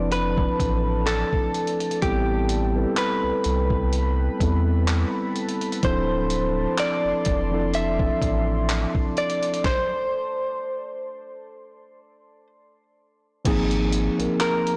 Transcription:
Already playing: F1 F3 C4 D4 E4 A4 B4 D5 A5 C6
0.12 B4 D6, closed hi-hat
0.38 kick
0.60 A1, kick, closed hi-hat
1.07 A4, clap, closed hi-hat
1.33 kick
1.54 closed hi-hat
1.67 closed hi-hat
1.80 closed hi-hat
1.91 closed hi-hat
2.02 A1 G3 B3 C4 E4 G4 A4 B4 G5 B5, kick, closed hi-hat
2.49 closed hi-hat
2.75 G3 C4 E4 A4 B4
2.97 B4, clap, closed hi-hat
3.24 C2
3.44 C2, closed hi-hat
3.70 kick
3.93 A5, closed hi-hat
4.40 E2 G3 B3 C4 E4 A4, kick, closed hi-hat
4.88 clap, closed hi-hat
5.36 closed hi-hat
5.49 closed hi-hat
5.61 closed hi-hat
5.72 closed hi-hat
5.83 D1 F3 C4 D4 E4 A4 C5 D5 A5 C6, kick, closed hi-hat
6.30 closed hi-hat
6.78 D5, clap, closed hi-hat
7.05 F1
7.25 F1, kick, closed hi-hat
7.51 F3 C4 D4 E4 A4
7.74 E5, closed hi-hat
7.99 kick
8.22 A1, kick, closed hi-hat
8.69 clap, closed hi-hat
8.95 kick
9.17 D5, closed hi-hat
9.30 closed hi-hat
9.43 closed hi-hat
9.54 closed hi-hat
9.64 C5, kick, snare
13.45 G#1 F3 A#3 C4 D#4 G#4 C5 F5 A#5, kick, closed hi-hat, crash
13.71 closed hi-hat
13.92 closed hi-hat
14.18 A#1 F3 A#3 C4 D#4 A#4, closed hi-hat
14.40 A#4, clap, closed hi-hat
14.67 closed hi-hat

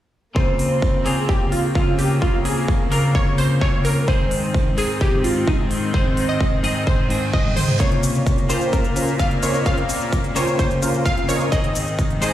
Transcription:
0.35 C#3 A#3 C4 F4 C5, kick
0.59 open hi-hat
0.82 kick
1.04 C#3 A#3 C4 F4 G#4, open hi-hat
1.29 G4, kick
1.52 F4, open hi-hat
1.75 C#3 A#3 C4 F4, kick
1.99 G4, open hi-hat
2.21 C#3 A#3 C4 F4, kick
2.45 G#4, open hi-hat
2.68 kick
2.91 C#3 A#3 C4 F4 A#4, open hi-hat
3.15 C#5, kick
3.38 C5, open hi-hat
3.61 C#3 A#3 C4 F4 C#5, kick
3.85 A#4, open hi-hat
4.07 G#2 D#3 G#3 C4 G#4 C5, kick
4.31 open hi-hat
4.54 kick
4.76 G#2 D#3 G#3 C4 G#4, open hi-hat
5.01 G4, kick
5.24 F4, open hi-hat
5.47 G#2 D#3 G#3 C4 D#4 G#4, kick
5.71 open hi-hat
5.93 G#2 D#3 G#3 C4 G#4 C5, kick
6.17 open hi-hat
6.29 D#5
6.41 kick
6.63 G#2 D#3 G#3 C4 G#4 D#5, open hi-hat
6.87 C5, kick, reverse cymbal
7.09 G#2 D#3 G#3 C4 G#4, open hi-hat
7.33 D#5, kick
7.45 high tom
7.56 C5, open hi-hat, mid tom
7.68 mid tom
7.79 A#2 C3 C#3 A#3 C#4 F4 A#4 C5 C#5 F5, kick, closed hi-hat, shaker
7.92 closed hi-hat
8.03 open hi-hat, shaker
8.15 closed hi-hat, shaker
8.26 kick, closed hi-hat, shaker
8.38 closed hi-hat
8.49 C#3 A#3 C#4 F4 A#4 C5 G5, open hi-hat, shaker
8.61 closed hi-hat, shaker
8.73 A#4, kick, closed hi-hat, shaker
8.85 closed hi-hat, shaker
8.96 C#4 F4 A#4 C5 F5, open hi-hat, shaker
9.08 closed hi-hat, shaker
9.19 C#3 A#3 C4 F4 F5, kick, closed hi-hat, shaker
9.31 closed hi-hat
9.43 C#4 F4 A#4 C5 C#5 D#5, open hi-hat, shaker
9.54 closed hi-hat, shaker
9.65 C#3 A#3 C4 C#4 F4 A#4 C5 F5, kick, closed hi-hat, shaker
9.78 closed hi-hat
9.89 open hi-hat, shaker
10.01 closed hi-hat, shaker
10.13 kick, closed hi-hat, shaker
10.24 closed hi-hat
10.34 C#3 A#3 C#4 F4 A#4 C5 C#5 G5, open hi-hat, shaker
10.47 closed hi-hat, shaker
10.59 C5, kick, closed hi-hat, shaker
10.71 closed hi-hat, shaker
10.82 C#4 F4 A#4 C5 F5, open hi-hat, shaker
10.94 closed hi-hat, shaker
11.05 C#3 A#3 C4 F4 F5, kick, closed hi-hat, shaker
11.17 closed hi-hat
11.29 C#4 F4 A#4 C5 C#5 D#5, open hi-hat, shaker
11.41 closed hi-hat, shaker
11.51 G#2 D#3 G#3 C4 D#4 G#4 C5 D#5, kick, closed hi-hat, shaker
11.64 closed hi-hat
11.75 open hi-hat, shaker
11.87 closed hi-hat, shaker
11.99 kick, closed hi-hat, shaker
12.10 closed hi-hat
12.21 G#2 D#3 G#3 C4 D#4 G#4 C5 D#5, open hi-hat, shaker

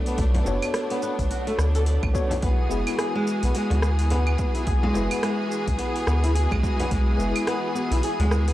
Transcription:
Already playing: A3 B3 D4 F#4 A4 C#5
0.06 B3, open hi-hat, shaker
0.18 B1 A3, kick, open hi-hat, shaker
0.34 open hi-hat, frame drum
0.44 F#1 B3 D4 F#4 A4, frame drum, shaker
0.48 C#5
0.62 open hi-hat, claves, shaker
0.74 cross-stick, open hi-hat, shaker
0.90 B3, open hi-hat
1.02 B3, shaker
1.19 A1 D4, kick, open hi-hat, shaker
1.31 F#4, open hi-hat, shaker
1.47 A3, open hi-hat
1.58 D2, cross-stick, shaker
1.75 A4, open hi-hat, shaker
1.86 D5, open hi-hat, shaker
2.03 B1, kick, claves
2.13 B3 D4 F#4 A4 C#5, kick, shaker
2.31 open hi-hat, frame drum, shaker
2.42 B1 E3 B3 F#4 G#4, kick, open hi-hat, shaker
2.68 F#1 G#3 B3 E4 G#4, shaker
2.73 B4
2.87 E4, open hi-hat, claves, shaker
2.98 G#4, cross-stick, open hi-hat, shaker
3.15 G#3
3.27 shaker
3.43 B1 B3, open hi-hat, shaker
3.55 G#3, open hi-hat, shaker
3.70 D2, open hi-hat, frame drum
3.82 cross-stick, shaker
3.99 open hi-hat, shaker
4.10 B3, open hi-hat, frame drum, shaker
4.27 claves
4.39 B3, kick, shaker
4.55 E4, open hi-hat, shaker
4.67 B1 G#4, kick, open hi-hat, shaker
4.83 G#3, frame drum
4.94 F#1 G#3 B3 E4 G#4 B4, frame drum, shaker
5.11 B3, open hi-hat, claves, shaker
5.23 G#3, cross-stick, open hi-hat, shaker
5.52 shaker
5.68 B1, kick, open hi-hat, shaker
5.78 B3, open hi-hat, shaker
5.96 open hi-hat
6.07 D2 B3, cross-stick, shaker
6.24 E4, open hi-hat, shaker
6.35 G#4, open hi-hat, shaker
6.51 B1 G#3, kick, claves
6.63 kick, shaker
6.79 B3, open hi-hat, frame drum, shaker
6.91 B1 G#3, kick, open hi-hat, shaker
7.17 F#1 G#3 B3 E4 G#4, shaker
7.21 B4
7.36 open hi-hat, claves, shaker
7.47 B3, cross-stick, open hi-hat, shaker
7.75 B3, shaker
7.91 B1 E4, open hi-hat, shaker
8.03 G#4, open hi-hat, shaker
8.20 D2 G#3, open hi-hat, frame drum
8.31 cross-stick, shaker
8.47 B3, open hi-hat, shaker

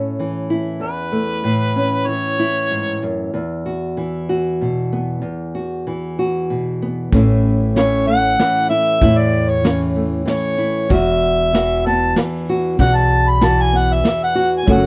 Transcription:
Already playing: A2 C#4 E4
0.20 E3
0.50 E4
0.80 E2 B4
1.12 A3
1.44 A2
1.76 C#4
2.07 E3 C#5
2.39 E4
2.71 G#2
3.03 F#2
3.34 E2
3.66 F#4
3.97 E3
4.29 F#4
4.61 B2
4.93 B3
5.22 E2
5.55 F#4
5.87 E3
6.19 F#4
6.50 B2
6.82 B3
7.12 A1 A2 E3 A3 C#4 E4, kick, ride
7.76 E3 C#4 C#5, snare, ride
8.07 A3 F#5
8.39 E3, snare, ride
8.69 E4 E5
9.01 E2 A2 E4, kick, ride
9.18 D5
9.49 C#5
9.64 E3 C#4, snare, ride
9.96 A3
10.26 E3, snare, ride
10.30 C#5
10.58 E4
10.89 E1 E2 F#4 E5, kick, ride
11.53 E3 F#4, snare, ride
11.86 B3 A5
12.16 E3, snare, ride
12.49 F#4
12.79 B1 E2 F#4 F#5, kick, ride
12.95 A5
13.29 B5
13.41 E3 F#4 A5, snare, ride
13.61 G#5
13.73 B3
13.77 F#5
13.93 E5
14.03 E3, snare, ride
14.23 F#5
14.35 F#4
14.57 G#5
14.66 F#1 F#2 F#3 A3 F#4, kick, ride
14.72 F#5

